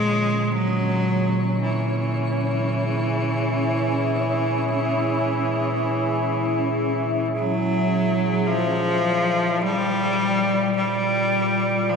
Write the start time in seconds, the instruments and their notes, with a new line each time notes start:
Already playing: synth drone A#2 D3, cello G#3, ambient pad C#4, synth texture C#4 C#5
0.52 cello F#3
0.91 ambient pad E4
1.63 cello E3
1.75 ambient pad G#4
2.19 ambient pad E5
7.35 cello F#3
8.47 synth drone A#2 C#3, cello F3, ambient pad D5, tam-tam
9.61 cello G3
9.67 ambient pad F4
10.24 ambient pad A#4
10.76 cello G3
11.90 cello F3